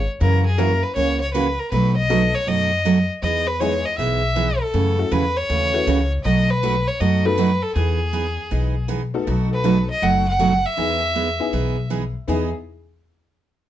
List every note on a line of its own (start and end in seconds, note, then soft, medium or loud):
0.21 0.81 F#2 loud
0.21 0.43 C#3 medium
0.21 0.43 E3 medium
0.21 0.43 A#3 medium
0.21 0.44 C#4 medium
0.21 0.44 F#4 medium
0.21 0.44 A#4 medium
0.46 0.60 G#4 medium
0.58 0.70 C#3 medium
0.58 0.70 E3 medium
0.58 0.81 A#3 medium
0.58 0.71 A#3 medium
0.58 0.81 C#4 medium
0.58 0.71 C#4 medium
0.58 0.81 E4 medium
0.58 0.81 F#4 medium
0.58 0.71 F#4 medium
0.58 0.85 A#4 medium
0.58 0.81 A#4 medium
0.83 0.95 B4 medium
0.96 1.57 C#2 medium
0.96 1.19 C#3 medium
0.96 1.19 E3 medium
0.96 1.19 A#3 medium
0.96 1.19 C#4 medium
0.96 1.19 F#4 medium
0.96 1.19 C#5 medium
1.21 1.33 C#5 medium
1.34 1.46 C#3 medium
1.34 1.46 E3 medium
1.34 1.46 A#3 medium
1.34 1.46 C#4 medium
1.34 1.47 F#4 medium
1.34 1.61 B4 medium
1.59 1.71 A#4 medium
1.72 2.32 B1 medium
1.72 1.94 B2 medium
1.72 1.94 F#3 medium
1.72 1.95 A3 medium
1.72 1.95 D#4 medium
1.72 1.95 F#4 medium
1.72 1.95 B4 medium
1.97 2.36 D#5 medium
2.09 2.22 B2 medium
2.09 2.22 F#3 medium
2.09 2.32 A3 medium
2.09 2.22 A3 medium
2.09 2.32 B3 medium
2.09 2.32 D#4 medium
2.09 2.22 D#4 medium
2.09 2.32 F#4 medium
2.09 2.22 F#4 medium
2.09 2.32 A4 medium
2.35 2.49 C#5 medium
2.47 3.07 F#2 medium
2.47 2.70 B2 medium
2.47 2.70 F#3 medium
2.47 2.70 A3 medium
2.47 2.70 D#4 medium
2.47 2.70 F#4 medium
2.47 3.10 D#5 loud
2.85 2.97 B2 medium
2.85 2.97 F#3 medium
2.85 2.97 A3 medium
2.85 2.97 D#4 medium
2.85 2.97 F#4 medium
3.22 3.83 E2 medium
3.22 3.45 E3 soft
3.22 3.46 B3 medium
3.22 3.46 D#4 medium
3.22 3.46 G#4 medium
3.22 3.49 D#5 loud
3.47 3.62 B4 medium
3.60 3.73 E3 medium
3.60 3.83 G#3 medium
3.60 3.83 B3 medium
3.60 3.73 B3 medium
3.60 3.83 D#4 medium
3.60 3.73 D#4 medium
3.60 3.83 E4 medium
3.60 3.83 G#4 medium
3.60 3.73 G#4 medium
3.60 3.87 C#5 loud
3.86 3.97 D#5 medium
3.98 4.59 B1 medium
3.98 4.21 E3 medium
3.98 4.21 B3 medium
3.98 4.21 D#4 medium
3.98 4.21 G#4 medium
3.98 4.62 E5 medium
4.36 4.48 E3 medium
4.36 4.48 B3 medium
4.36 4.48 D#4 medium
4.36 4.48 G#4 medium
4.61 5.14 A4 medium
4.74 5.04 F#2 medium
4.74 4.96 C#3 medium
4.74 4.96 E3 medium
4.74 4.97 A3 medium
4.74 4.97 C#4 medium
4.74 4.97 F#4 medium
4.98 5.10 A3 medium
4.98 5.10 C#4 medium
4.98 5.10 E4 medium
4.98 5.10 F#4 medium
4.98 5.10 A4 medium
5.11 5.44 E2 medium
5.11 5.23 C#3 medium
5.11 5.24 E3 medium
5.11 5.24 A3 medium
5.11 5.24 C#4 medium
5.11 5.24 F#4 medium
5.11 5.39 B4 loud
5.37 6.12 C#5 loud
5.49 5.82 D#2 medium
5.49 5.72 C#3 medium
5.49 5.72 E3 medium
5.49 5.72 A3 medium
5.49 5.72 C#4 medium
5.49 5.72 F#4 medium
5.73 5.85 A3 medium
5.73 5.85 C#4 medium
5.73 5.85 E4 medium
5.73 5.86 F#4 medium
5.73 5.86 B4 medium
5.87 6.19 C#2 medium
5.87 5.99 C#3 medium
5.87 5.99 E3 medium
5.87 5.99 A3 medium
5.87 5.99 C#4 medium
5.87 6.00 F#4 medium
6.24 6.85 B1 loud
6.24 6.48 B2 medium
6.24 6.48 F#3 medium
6.24 6.48 A3 medium
6.24 6.48 D#4 medium
6.24 6.48 F#4 medium
6.24 6.52 D#5 loud
6.50 6.89 B4 loud
6.63 6.75 B2 medium
6.63 6.75 F#3 medium
6.63 6.75 A3 medium
6.63 6.75 D#4 medium
6.63 6.75 F#4 medium
6.88 7.02 C#5 medium
7.00 7.61 F#2 medium
7.00 7.23 B2 medium
7.00 7.23 F#3 medium
7.00 7.23 A3 medium
7.00 7.23 D#4 medium
7.00 7.23 F#4 medium
7.00 7.27 D#5 medium
7.25 7.37 A3 medium
7.25 7.37 B3 medium
7.25 7.37 D#4 medium
7.25 7.37 F#4 medium
7.25 7.37 A4 medium
7.25 7.64 B4 medium
7.38 7.50 B2 medium
7.38 7.50 F#3 medium
7.38 7.50 A3 medium
7.38 7.50 D#4 medium
7.38 7.50 F#4 loud
7.63 7.75 A4 medium
7.76 8.36 E2 loud
7.76 7.98 E3 medium
7.76 7.98 B3 medium
7.76 7.99 D#4 medium
7.76 8.85 G#4 medium
7.76 7.99 G#4 medium
8.13 8.25 E3 medium
8.13 8.25 B3 medium
8.13 8.26 D#4 medium
8.13 8.26 G#4 medium
8.51 9.12 B1 medium
8.51 8.74 E3 medium
8.51 8.74 B3 medium
8.51 8.74 D#4 medium
8.51 8.74 G#4 medium
8.88 9.01 E3 medium
8.88 9.01 B3 medium
8.88 9.01 D#4 medium
8.88 9.01 G#4 medium
9.14 9.62 A3 medium
9.14 9.62 B3 medium
9.14 9.62 D#4 medium
9.14 9.62 F#4 medium
9.14 9.62 A4 medium
9.27 9.87 B1 loud
9.27 9.49 B2 medium
9.27 9.50 F#3 medium
9.27 9.49 A3 medium
9.27 9.50 D#4 medium
9.27 9.50 F#4 medium
9.53 9.88 B4 loud
9.64 9.76 B2 medium
9.64 9.76 F#3 medium
9.64 9.76 A3 medium
9.64 9.87 B3 medium
9.64 9.76 D#4 medium
9.64 9.87 D#4 medium
9.64 9.77 F#4 medium
9.64 9.87 F#4 medium
9.64 9.87 A4 medium
9.90 10.05 D#5 medium
10.02 10.63 F#1 medium
10.02 10.25 B2 medium
10.02 10.25 F#3 medium
10.02 10.25 A3 medium
10.02 10.25 D#4 medium
10.02 10.25 F#4 medium
10.02 10.28 F#5 loud
10.29 10.67 F#5 loud
10.39 10.52 B2 medium
10.39 10.52 F#3 medium
10.39 10.52 A3 medium
10.39 10.52 D#4 medium
10.39 10.52 F#4 medium
10.66 11.91 E5 loud
10.77 11.38 E2 medium
10.77 11.00 E3 medium
10.77 11.00 B3 medium
10.77 11.00 D#4 medium
10.77 11.00 E4 medium
10.77 11.00 G#4 medium
10.77 11.01 G#4 medium
11.15 11.27 E3 medium
11.15 11.28 B3 medium
11.15 11.28 D#4 medium
11.15 11.28 G#4 medium
11.40 11.52 B3 medium
11.40 11.52 D#4 medium
11.40 11.52 E4 medium
11.40 11.52 G#4 medium
11.53 12.13 B1 medium
11.53 11.76 E3 medium
11.53 11.76 B3 medium
11.53 11.76 D#4 medium
11.53 11.76 G#4 medium
11.90 12.03 E3 medium
11.90 12.03 B3 medium
11.90 12.03 D#4 medium
11.90 12.03 G#4 medium
12.28 12.52 E2 medium
12.28 12.48 E3 medium
12.28 12.51 B3 medium
12.28 12.49 B3 medium
12.28 12.51 D#4 medium
12.28 12.49 D#4 medium
12.28 12.51 E4 medium
12.28 12.51 G#4 medium
12.28 12.49 G#4 medium